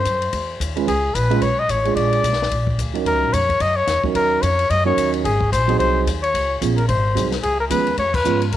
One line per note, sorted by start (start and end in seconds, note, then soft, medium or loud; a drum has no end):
0.00 0.57 C5 medium
0.05 0.32 F#2 medium
0.05 kick soft
0.05 hi-hat pedal soft
0.05 ride medium
0.22 ride soft
0.33 0.59 E2 medium
0.33 kick soft
0.33 ride medium
0.60 0.86 D#2 medium
0.60 kick soft
0.60 hi-hat pedal medium
0.60 ride medium
0.76 0.86 G#3 medium
0.76 0.86 C#4 medium
0.76 0.86 F4 medium
0.76 0.86 B4 medium
0.76 ride soft
0.87 1.14 C#2 medium
0.87 1.16 G#4 medium
0.87 kick soft
0.87 ride medium
1.15 1.41 A#1 medium
1.15 1.44 B4 medium
1.15 kick soft
1.15 hi-hat pedal soft
1.15 ride medium
1.30 1.40 G#3 medium
1.30 1.40 C#4 medium
1.30 1.41 F4 medium
1.30 1.41 B4 medium
1.30 ride soft
1.41 1.68 B1 medium
1.41 1.61 C#5 medium
1.41 kick soft
1.41 ride medium
1.59 1.72 D#5 medium
1.69 1.95 A1 medium
1.69 1.95 C#5 medium
1.69 kick soft
1.69 hi-hat pedal medium
1.69 ride medium
1.85 2.21 G#3 medium
1.85 2.22 D4 medium
1.85 2.22 F4 medium
1.85 2.22 G#4 medium
1.85 ride soft
1.96 2.23 A#1 medium
1.96 2.74 D5 medium
1.96 kick soft
1.96 ride medium
2.12 ride soft
2.23 2.50 B1 medium
2.23 kick soft
2.23 hi-hat pedal soft
2.23 ride medium
2.33 snare soft
2.42 snare soft
2.51 2.78 A#1 medium
2.51 kick soft
2.51 ride medium
2.67 kick medium
2.78 3.05 D2 medium
2.78 kick soft
2.78 hi-hat pedal medium
2.78 ride medium
2.94 3.30 F#3 medium
2.94 3.31 C#4 soft
2.94 3.31 D#4 medium
2.94 3.31 A#4 medium
2.94 ride soft
3.05 3.14 D#2 medium
3.05 3.35 A#4 medium
3.05 kick soft
3.05 ride medium
3.14 3.23 C#2 medium
3.23 3.32 A#1 medium
3.33 3.60 F2 medium
3.33 3.63 C#5 medium
3.33 kick soft
3.33 hi-hat pedal medium
3.33 ride medium
3.49 kick soft
3.49 ride soft
3.60 3.87 F#2 medium
3.60 3.78 D#5 medium
3.60 kick soft
3.60 ride medium
3.76 4.04 C#5 medium
3.87 4.03 E2 medium
3.87 kick soft
3.87 snare soft
3.87 hi-hat pedal medium
3.87 ride medium
4.03 4.40 F#3 medium
4.03 4.40 C#4 soft
4.03 4.40 D#4 soft
4.03 4.41 A#4 medium
4.03 muted upright bass stroke soft
4.03 kick soft
4.15 4.42 D#2 medium
4.15 4.44 A#4 medium
4.15 kick soft
4.15 ride medium
4.42 4.69 F2 medium
4.42 4.72 C#5 medium
4.42 kick soft
4.42 hi-hat pedal medium
4.42 ride medium
4.59 ride soft
4.70 4.96 F#2 medium
4.70 4.85 D#5 loud
4.70 kick soft
4.70 ride medium
4.85 5.22 F#3 medium
4.85 5.22 C#4 medium
4.85 5.22 D#4 medium
4.85 5.23 A#4 medium
4.85 5.12 C#5 medium
4.97 5.24 D#2 medium
4.97 kick soft
4.97 hi-hat pedal medium
4.97 ride medium
5.14 ride soft
5.24 5.51 G#1 medium
5.24 5.50 G#4 medium
5.24 kick soft
5.24 ride medium
5.41 kick medium
5.52 5.78 A#1 medium
5.52 5.78 C5 medium
5.52 kick soft
5.52 hi-hat pedal medium
5.52 ride medium
5.68 6.04 F#3 medium
5.68 6.05 C4 medium
5.68 6.05 D#4 medium
5.68 6.05 G#4 medium
5.68 ride soft
5.79 6.06 C2 medium
5.79 6.05 C5 medium
5.79 kick soft
5.79 ride medium
6.07 6.33 D#2 medium
6.07 kick soft
6.07 hi-hat pedal medium
6.07 ride medium
6.23 6.59 C#5 medium
6.23 ride soft
6.34 6.61 C#2 medium
6.34 kick soft
6.34 ride medium
6.61 6.88 A#1 medium
6.61 6.76 F3 medium
6.61 6.76 B3 medium
6.61 6.76 C#4 soft
6.61 6.76 G#4 medium
6.61 kick soft
6.61 hi-hat pedal medium
6.61 ride medium
6.77 6.87 A#4 medium
6.77 ride soft
6.88 7.15 G#1 medium
6.88 7.29 C5 medium
6.88 kick soft
6.88 ride medium
7.15 7.42 C2 medium
7.15 7.30 F#3 medium
7.15 7.30 C4 soft
7.15 7.30 D#4 soft
7.15 7.31 G#4 medium
7.15 kick soft
7.15 hi-hat pedal medium
7.15 ride medium
7.32 snare soft
7.32 ride soft
7.43 7.70 C#2 medium
7.43 7.58 G#4 medium
7.43 kick soft
7.43 ride medium
7.60 7.65 A#4 medium
7.70 7.97 D#2 medium
7.70 7.85 F3 medium
7.70 7.85 G#3 soft
7.70 7.85 B3 soft
7.70 7.85 C#4 medium
7.70 7.85 G#4 medium
7.70 7.96 B4 medium
7.70 kick soft
7.70 hi-hat pedal medium
7.70 ride medium
7.87 ride soft
7.97 8.24 F2 medium
7.97 8.16 C#5 medium
7.97 kick soft
7.97 ride medium
8.14 8.42 B4 medium
8.14 kick medium
8.14 crash medium
8.24 8.51 G#2 medium
8.24 8.39 F3 medium
8.24 8.39 G#3 soft
8.24 8.39 B3 soft
8.24 8.40 C#4 soft
8.24 8.40 F4 medium
8.24 hi-hat pedal medium
8.42 ride soft
8.52 8.57 F#2 medium
8.52 kick soft
8.52 ride medium